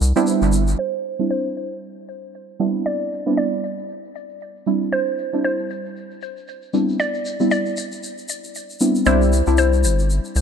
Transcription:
Already playing: synth stab G3 B3 C4 D4 E4
0.01 analog synth bass C2, shaker
0.16 synth stab G3 B3 C4 D4 E4, shaker
0.27 shaker
0.42 analog synth bass G1, shaker
0.52 shaker
0.68 shaker
0.79 synth pluck C5
1.05 shaker
1.19 synth stab G3 C4 D4 E4, shaker
1.30 synth pluck C5, shaker
1.46 shaker
1.57 shaker
1.72 shaker
1.82 shaker
1.97 shaker
2.08 shaker
2.23 shaker
2.34 shaker
2.49 shaker
2.60 synth stab G3 B3 C4 D4 E4, shaker
2.75 shaker
2.85 synth pluck D5, shaker
3.00 shaker
3.12 shaker
3.26 synth stab G3 B3 C4 D4 E4, shaker
3.37 synth pluck D5, shaker
3.52 shaker
3.64 shaker
3.78 shaker
3.89 shaker
4.04 shaker
4.15 shaker
4.29 shaker
4.40 shaker
4.56 shaker
4.66 synth stab G3 C4 D4 E4, shaker
4.81 shaker
4.92 synth pluck C5, shaker
5.07 shaker
5.18 shaker
5.33 synth stab G3 C4 D4 E4, shaker
5.44 synth pluck C5, shaker
5.58 shaker
5.70 shaker
5.85 shaker
5.96 shaker
6.11 shaker
6.22 shaker
6.37 shaker
6.48 shaker
6.62 shaker
6.73 synth stab G3 B3 C4 D4 E4, shaker
6.89 shaker
6.99 synth pluck D5, shaker
7.14 shaker
7.25 shaker
7.40 synth stab G3 B3 C4 D4 E4, shaker
7.51 synth pluck D5, shaker
7.66 shaker
7.77 shaker
7.92 shaker
8.03 shaker
8.18 shaker
8.29 shaker
8.44 shaker
8.55 shaker
8.70 shaker
8.80 synth stab G3 B3 C4 D4 E4, shaker
8.95 shaker
9.06 analog synth bass C2, synth stab G3 C4 D4 E4, synth pluck C5, shaker
9.22 shaker
9.33 shaker
9.47 analog synth bass C2, synth stab G3 C4 D4 E4, shaker
9.58 synth pluck C5, shaker
9.73 shaker
9.84 analog synth bass G1, shaker
9.99 shaker
10.10 shaker
10.24 shaker
10.36 analog synth bass C2, shaker

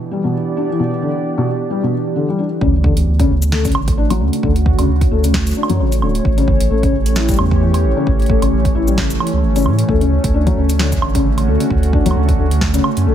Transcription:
Already playing: ambient pad E3 B3 D4 G4 D5
0.11 felt piano G3
0.24 felt piano B2
0.57 felt piano D4
0.69 felt piano E3
0.79 felt piano B2
1.02 felt piano D3
1.38 felt piano B2
1.70 felt piano G3
1.83 felt piano B2
2.16 felt piano D3
2.29 felt piano G3
2.39 felt piano D4
2.61 sub bass D2, felt piano C#3, ambient pad D3, kick
2.70 ambient pad A3
2.82 felt piano D3, ambient pad C#4, kick
2.97 sub bass D2, closed hi-hat
3.07 sub bass D2
3.19 felt piano C#3, kick, closed hi-hat
3.29 sub bass D2
3.42 cabasa
3.52 felt piano A3, snare
3.57 ambient pad F#4
3.65 felt piano C#3, kick, closed hi-hat, cabasa
3.67 closed hi-hat
3.72 sub bass A1, closed hi-hat, high woodblock
3.88 kick, closed hi-hat
3.98 felt piano D4
4.10 felt piano F#3, closed hi-hat, high woodblock
4.20 sub bass D2, felt piano C#3
4.26 ambient pad C#5
4.33 closed hi-hat
4.43 sub bass D2, felt piano D3, kick
4.56 closed hi-hat
4.66 kick
4.79 sub bass D2, felt piano C#3, closed hi-hat, high woodblock
4.89 sub bass D2
5.01 kick, closed hi-hat
5.11 sub bass D2, felt piano A3
5.24 felt piano C#3, closed hi-hat, cabasa
5.34 kick, snare
5.47 closed hi-hat, cabasa
5.49 cabasa
5.51 cabasa
5.53 cabasa
5.55 felt piano D4, cabasa
5.63 high woodblock
5.70 sub bass F#2, felt piano F#3, closed hi-hat
5.80 sub bass A1, felt piano C#3
5.92 closed hi-hat, cabasa
6.02 sub bass D1, felt piano D3, high woodblock
6.15 closed hi-hat
6.25 sub bass A1, ambient pad E3, kick
6.38 felt piano C#3, closed hi-hat
6.48 ambient pad G4, kick
6.60 sub bass A1, closed hi-hat
6.70 sub bass A1, felt piano A3
6.83 felt piano C#3, kick, closed hi-hat
6.93 sub bass A1
7.06 closed hi-hat
7.16 felt piano E4, snare, cabasa
7.29 felt piano G3, kick, closed hi-hat, cabasa
7.31 cabasa
7.34 cabasa
7.36 sub bass E2, felt piano C#3, cabasa, high woodblock
7.51 kick
7.61 felt piano E3
7.74 closed hi-hat, high woodblock
7.84 sub bass A1
7.97 felt piano C#3
8.07 sub bass A1, kick
8.20 closed hi-hat
8.22 closed hi-hat
8.26 felt piano A3, kick, closed hi-hat
8.42 sub bass A1, felt piano C#3, closed hi-hat, high woodblock
8.52 sub bass A1
8.65 kick, closed hi-hat
8.75 sub bass A1, felt piano E4
8.88 felt piano G3, cabasa
8.98 felt piano C#3, kick, snare
9.10 closed hi-hat, cabasa
9.20 felt piano E3, high woodblock
9.27 closed hi-hat
9.33 sub bass C#2
9.43 sub bass G1
9.56 felt piano C#3, closed hi-hat, cabasa
9.58 cabasa
9.60 cabasa
9.62 cabasa
9.64 sub bass A2, cabasa, high woodblock
9.79 closed hi-hat
9.89 sub bass D2, ambient pad D3, felt piano A3, kick
10.01 felt piano C#3, closed hi-hat
10.24 sub bass D2, kick, closed hi-hat
10.34 sub bass D2, felt piano D4
10.47 felt piano F#3, kick, closed hi-hat
10.57 sub bass D2, felt piano C#3
10.69 closed hi-hat, cabasa
10.79 felt piano D3, snare
10.92 ambient pad F#4, kick, closed hi-hat, cabasa
11.02 sub bass A1, high woodblock
11.15 felt piano C#3, kick, closed hi-hat
11.38 closed hi-hat, high woodblock
11.48 sub bass D2, felt piano A3
11.60 felt piano C#3, closed hi-hat
11.70 sub bass D2, kick
11.83 closed hi-hat
11.93 felt piano D4, kick
12.06 sub bass D2, felt piano F#3, closed hi-hat
12.11 high woodblock
12.16 sub bass D2, felt piano C#3
12.29 kick, closed hi-hat
12.39 sub bass D2, felt piano D3
12.51 closed hi-hat
12.61 kick, snare
12.74 felt piano C#3, closed hi-hat, cabasa
12.84 high woodblock
12.97 sub bass F#2, closed hi-hat
13.07 sub bass A1, felt piano A3

